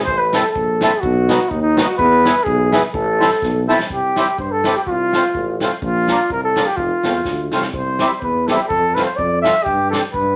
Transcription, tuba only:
0, 0, Header, 1, 2, 480
1, 0, Start_track
1, 0, Key_signature, 0, "minor"
1, 0, Tempo, 479616
1, 75, Time_signature, 2, 2, 24, 8
1, 3909, Key_signature, 0, "major"
1, 10367, End_track
2, 0, Start_track
2, 0, Title_t, "Tuba"
2, 0, Program_c, 0, 58
2, 75, Note_on_c, 0, 33, 89
2, 389, Note_off_c, 0, 33, 0
2, 554, Note_on_c, 0, 34, 78
2, 868, Note_off_c, 0, 34, 0
2, 1035, Note_on_c, 0, 35, 106
2, 1348, Note_off_c, 0, 35, 0
2, 1507, Note_on_c, 0, 39, 91
2, 1820, Note_off_c, 0, 39, 0
2, 1988, Note_on_c, 0, 40, 113
2, 2299, Note_off_c, 0, 40, 0
2, 2466, Note_on_c, 0, 35, 100
2, 2776, Note_off_c, 0, 35, 0
2, 2940, Note_on_c, 0, 33, 115
2, 3254, Note_off_c, 0, 33, 0
2, 3428, Note_on_c, 0, 35, 87
2, 3742, Note_off_c, 0, 35, 0
2, 3901, Note_on_c, 0, 36, 73
2, 4218, Note_off_c, 0, 36, 0
2, 4383, Note_on_c, 0, 43, 77
2, 4699, Note_off_c, 0, 43, 0
2, 4873, Note_on_c, 0, 36, 84
2, 5186, Note_off_c, 0, 36, 0
2, 5342, Note_on_c, 0, 33, 88
2, 5657, Note_off_c, 0, 33, 0
2, 5821, Note_on_c, 0, 34, 96
2, 6135, Note_off_c, 0, 34, 0
2, 6303, Note_on_c, 0, 36, 79
2, 6616, Note_off_c, 0, 36, 0
2, 6778, Note_on_c, 0, 29, 85
2, 6951, Note_off_c, 0, 29, 0
2, 7037, Note_on_c, 0, 40, 70
2, 7240, Note_off_c, 0, 40, 0
2, 7252, Note_on_c, 0, 38, 76
2, 7494, Note_off_c, 0, 38, 0
2, 7524, Note_on_c, 0, 36, 72
2, 7726, Note_off_c, 0, 36, 0
2, 7739, Note_on_c, 0, 36, 91
2, 8058, Note_off_c, 0, 36, 0
2, 8223, Note_on_c, 0, 40, 82
2, 8542, Note_off_c, 0, 40, 0
2, 8708, Note_on_c, 0, 41, 77
2, 9024, Note_off_c, 0, 41, 0
2, 9192, Note_on_c, 0, 41, 86
2, 9505, Note_off_c, 0, 41, 0
2, 9669, Note_on_c, 0, 43, 95
2, 9982, Note_off_c, 0, 43, 0
2, 10151, Note_on_c, 0, 43, 90
2, 10367, Note_off_c, 0, 43, 0
2, 10367, End_track
0, 0, End_of_file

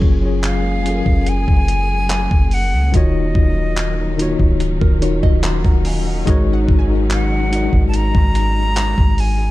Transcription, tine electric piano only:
0, 0, Header, 1, 2, 480
1, 0, Start_track
1, 0, Key_signature, -6, "minor"
1, 0, Tempo, 833333
1, 1692, Time_signature, 4, 2, 24, 8
1, 5477, End_track
2, 0, Start_track
2, 0, Title_t, "Tine electric piano"
2, 0, Program_c, 0, 4
2, 0, Control_c, 0, 64, 127
2, 0, Note_on_c, 0, 54, 121
2, 0, Note_on_c, 0, 61, 105
2, 0, Note_on_c, 0, 65, 110
2, 0, Note_on_c, 0, 68, 111
2, 0, Note_on_c, 0, 70, 127
2, 65, Note_off_c, 0, 54, 0
2, 69, Note_off_c, 0, 61, 0
2, 72, Note_off_c, 0, 65, 0
2, 76, Note_off_c, 0, 68, 0
2, 79, Note_off_c, 0, 70, 0
2, 121, Note_on_c, 0, 54, 69
2, 128, Note_on_c, 0, 61, 64
2, 135, Note_on_c, 0, 65, 66
2, 143, Note_on_c, 0, 68, 67
2, 150, Note_on_c, 0, 73, 81
2, 426, Note_off_c, 0, 54, 0
2, 429, Note_off_c, 0, 61, 0
2, 433, Note_off_c, 0, 65, 0
2, 436, Note_off_c, 0, 68, 0
2, 440, Note_off_c, 0, 73, 0
2, 483, Note_on_c, 0, 54, 77
2, 490, Note_on_c, 0, 61, 70
2, 497, Note_on_c, 0, 65, 67
2, 503, Note_on_c, 0, 68, 69
2, 511, Note_on_c, 0, 69, 68
2, 539, Note_off_c, 0, 69, 0
2, 549, Note_on_c, 0, 70, 86
2, 1285, Note_off_c, 0, 54, 0
2, 1289, Note_off_c, 0, 61, 0
2, 1292, Note_off_c, 0, 65, 0
2, 1296, Note_off_c, 0, 68, 0
2, 1318, Note_off_c, 0, 70, 0
2, 1682, Note_on_c, 0, 51, 106
2, 1689, Note_on_c, 0, 63, 93
2, 1696, Note_on_c, 0, 65, 92
2, 1700, Control_c, 0, 64, 0
2, 1704, Note_on_c, 0, 66, 93
2, 1711, Note_on_c, 0, 73, 111
2, 1815, Control_c, 0, 64, 127
2, 2286, Note_off_c, 0, 51, 0
2, 2289, Note_off_c, 0, 63, 0
2, 2293, Note_off_c, 0, 65, 0
2, 2296, Note_off_c, 0, 66, 0
2, 2300, Note_off_c, 0, 73, 0
2, 2403, Note_on_c, 0, 51, 97
2, 2410, Note_on_c, 0, 63, 88
2, 2417, Note_on_c, 0, 65, 86
2, 2425, Note_on_c, 0, 66, 85
2, 2431, Note_on_c, 0, 73, 104
2, 2807, Note_off_c, 0, 51, 0
2, 2810, Note_off_c, 0, 63, 0
2, 2814, Note_off_c, 0, 65, 0
2, 2817, Note_off_c, 0, 66, 0
2, 2821, Note_off_c, 0, 73, 0
2, 2882, Note_on_c, 0, 51, 88
2, 2890, Note_on_c, 0, 63, 80
2, 2896, Note_on_c, 0, 65, 86
2, 2904, Note_on_c, 0, 66, 82
2, 2911, Note_on_c, 0, 70, 95
2, 3137, Note_on_c, 0, 82, 77
2, 3138, Note_on_c, 0, 78, 68
2, 3141, Note_on_c, 0, 75, 54
2, 3249, Note_off_c, 0, 78, 0
2, 3251, Note_off_c, 0, 75, 0
2, 3251, Note_off_c, 0, 82, 0
2, 3258, Note_on_c, 0, 82, 74
2, 3261, Note_on_c, 0, 78, 65
2, 3369, Note_off_c, 0, 82, 0
2, 3370, Note_off_c, 0, 78, 0
2, 3378, Note_on_c, 0, 75, 71
2, 3378, Note_on_c, 0, 80, 73
2, 3382, Note_on_c, 0, 77, 61
2, 3485, Note_off_c, 0, 51, 0
2, 3489, Note_off_c, 0, 63, 0
2, 3489, Note_off_c, 0, 80, 0
2, 3491, Note_off_c, 0, 77, 0
2, 3493, Note_off_c, 0, 65, 0
2, 3494, Note_off_c, 0, 75, 0
2, 3496, Note_off_c, 0, 66, 0
2, 3497, Note_on_c, 0, 78, 65
2, 3500, Note_off_c, 0, 70, 0
2, 3501, Note_on_c, 0, 75, 56
2, 3603, Note_on_c, 0, 56, 118
2, 3610, Note_on_c, 0, 63, 112
2, 3617, Note_on_c, 0, 66, 118
2, 3619, Control_c, 0, 64, 0
2, 3624, Note_on_c, 0, 70, 116
2, 3631, Note_on_c, 0, 73, 127
2, 3708, Control_c, 0, 64, 127
2, 3722, Note_off_c, 0, 78, 0
2, 3724, Note_off_c, 0, 75, 0
2, 3906, Note_off_c, 0, 56, 0
2, 3910, Note_off_c, 0, 63, 0
2, 3914, Note_off_c, 0, 66, 0
2, 3917, Note_off_c, 0, 70, 0
2, 3921, Note_off_c, 0, 73, 0
2, 3962, Note_on_c, 0, 56, 68
2, 3969, Note_on_c, 0, 63, 68
2, 3976, Note_on_c, 0, 66, 66
2, 3983, Note_on_c, 0, 70, 67
2, 3990, Note_on_c, 0, 75, 78
2, 4266, Note_off_c, 0, 56, 0
2, 4270, Note_off_c, 0, 63, 0
2, 4273, Note_off_c, 0, 66, 0
2, 4277, Note_off_c, 0, 70, 0
2, 4280, Note_off_c, 0, 75, 0
2, 4322, Note_on_c, 0, 56, 77
2, 4330, Note_on_c, 0, 63, 72
2, 4337, Note_on_c, 0, 66, 72
2, 4344, Note_on_c, 0, 70, 70
2, 4351, Note_on_c, 0, 74, 69
2, 4379, Note_off_c, 0, 74, 0
2, 4389, Note_on_c, 0, 75, 86
2, 5125, Note_off_c, 0, 56, 0
2, 5129, Note_off_c, 0, 63, 0
2, 5132, Note_off_c, 0, 66, 0
2, 5136, Note_off_c, 0, 70, 0
2, 5158, Note_off_c, 0, 75, 0
2, 5477, End_track
0, 0, End_of_file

